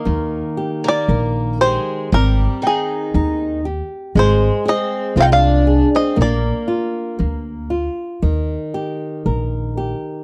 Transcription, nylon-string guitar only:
\new Staff \with { instrumentName = "Nylon-string guitar" } { \time 2/4 \key ees \major \tempo 4 = 58 ees8 g'8 bes'8 g'8 | c'8 g''8 ees'8 g'8 | aes8 aes'8 f'8 aes'8 | bes8 f'8 bes8 f'8 |
ees8 g'8 bes'8 g'8 | }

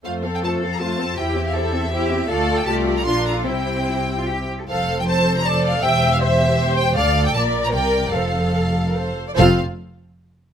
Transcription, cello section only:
\new Staff \with { instrumentName = "Cello section" } { \time 3/4 \key f \major \tempo 4 = 156 r4 a'4 f'4 | g'4 a'4 g'4 | a'4 g'4 f'4 | e'4 e'8. f'16 g'8. a'16 |
f,2. | e,2. | d,4 bes,4 c4 | f,2~ f,8 r8 |
f,8 r2 r8 | }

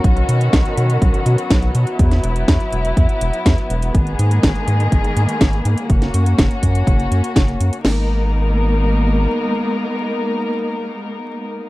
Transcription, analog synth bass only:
\new Staff \with { instrumentName = "Analog synth bass" } { \clef bass \time 4/4 \key gis \minor \tempo 4 = 123 b,,8 b,8 b,,8 b,8 b,,8 b,8 b,,8 b,8 | e,8 e,,8 e,8 e,,8 e,8 e,,8 e,8 e,,8 | gis,,8 gis,8 gis,,8 gis,8 gis,,8 gis,8 gis,,8 gis,8 | fis,,8 fis,8 fis,,8 fis,8 fis,,8 fis,8 fis,,8 fis,8 |
gis,,2. r4 | r1 | }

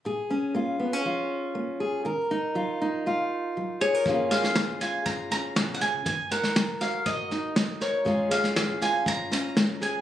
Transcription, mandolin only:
\new Staff \with { instrumentName = "Mandolin" } { \time 4/4 \key bes \phrygian \tempo 4 = 120 r1 | r2. r8 des''8~ | des''8 f''4 aes''8 bes''8 bes''8.~ bes''32 ges''32 aes''8 | aes''8 ges''4 f''8 ees''4. des''8~ |
des''8 f''4 aes''8 bes''8 bes''4 aes''8 | }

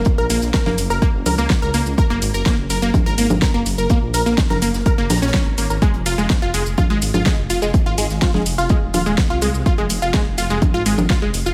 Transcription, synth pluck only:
\new Staff \with { instrumentName = "Synth pluck" } { \time 4/4 \key ges \lydian \tempo 4 = 125 r16 <bes' bes''>16 <bes bes'>16 r16 <bes' bes''>16 <bes bes'>16 r16 <bes' bes''>16 <bes bes'>16 r16 <bes' bes''>16 <bes bes'>16 r16 <bes' bes''>16 <bes bes'>16 r16 | <bes' bes''>16 <bes bes'>16 r16 <bes' bes''>16 <bes bes'>16 r16 <bes' bes''>16 <bes bes'>16 r16 <bes' bes''>16 <bes bes'>16 r16 <bes' bes''>16 <bes bes'>16 r16 <bes' bes''>16 | <bes bes'>16 r16 <bes' bes''>16 <bes bes'>16 r16 <bes' bes''>16 <bes bes'>16 r16 <bes' bes''>16 <bes bes'>16 <bes'' bes'''>16 <des' des''>16 <des' des''>16 r16 <bes bes'>16 <bes' bes''>16 | <aes aes'>16 r16 <f' f''>16 <aes aes'>16 r16 <f' f''>16 <aes aes'>16 r16 <f' f''>16 <aes aes'>16 r16 <f' f''>16 <aes aes'>16 r16 <f' f''>16 <aes aes'>16 |
r16 <f' f''>16 <aes aes'>16 r16 <f' f''>16 <aes aes'>16 r16 <f' f''>16 <aes aes'>16 r16 <f' f''>16 <aes aes'>16 r16 <f' f''>16 <aes aes'>16 r16 | <f' f''>16 <aes aes'>16 r16 <f' f''>16 <aes aes'>16 r16 <f' f''>16 <aes aes'>16 r16 <f' f''>16 <aes aes'>16 r16 <f' f''>16 <aes aes'>16 r16 <f' f''>16 | }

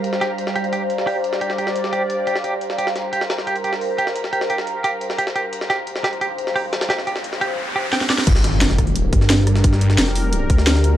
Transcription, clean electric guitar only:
\new Staff \with { instrumentName = "Clean electric guitar" } { \time 4/4 \key g \minor \tempo 4 = 175 r8 g'16 r8. g'16 r16 g'16 r8. g'16 r8. | g'16 r16 g'16 r8. g'16 r8. g'16 r16 g'16 r8. | g'16 r8. g'16 r8. g'16 r16 g'16 r8. g'16 r16 | r8 g'16 r16 g'16 r8. g'16 r8. g'16 r16 g'16 r16 |
r8 g'16 r8. g'16 r16 g'16 r8. g'16 r8. | g'16 r16 g'16 r8. g'16 r8. g'16 r16 g''16 r16 d''16 r16 | r1 | r1 | }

